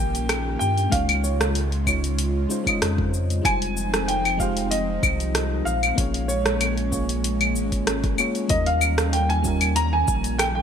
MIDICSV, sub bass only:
0, 0, Header, 1, 2, 480
1, 0, Start_track
1, 0, Tempo, 631579
1, 702, Time_signature, 4, 2, 24, 8
1, 8072, End_track
2, 0, Start_track
2, 0, Title_t, "Sub bass"
2, 0, Program_c, 0, 38
2, 0, Note_on_c, 0, 34, 83
2, 431, Note_off_c, 0, 34, 0
2, 465, Note_on_c, 0, 43, 109
2, 665, Note_off_c, 0, 43, 0
2, 702, Note_on_c, 0, 37, 102
2, 1871, Note_off_c, 0, 37, 0
2, 2140, Note_on_c, 0, 41, 94
2, 2590, Note_off_c, 0, 41, 0
2, 2621, Note_on_c, 0, 29, 101
2, 3791, Note_off_c, 0, 29, 0
2, 3824, Note_on_c, 0, 36, 90
2, 4272, Note_off_c, 0, 36, 0
2, 4302, Note_on_c, 0, 34, 102
2, 4503, Note_off_c, 0, 34, 0
2, 4543, Note_on_c, 0, 34, 96
2, 5746, Note_on_c, 0, 32, 80
2, 5757, Note_off_c, 0, 34, 0
2, 6193, Note_off_c, 0, 32, 0
2, 6462, Note_on_c, 0, 39, 103
2, 7631, Note_off_c, 0, 39, 0
2, 7662, Note_on_c, 0, 34, 87
2, 8072, Note_off_c, 0, 34, 0
2, 8072, End_track
0, 0, End_of_file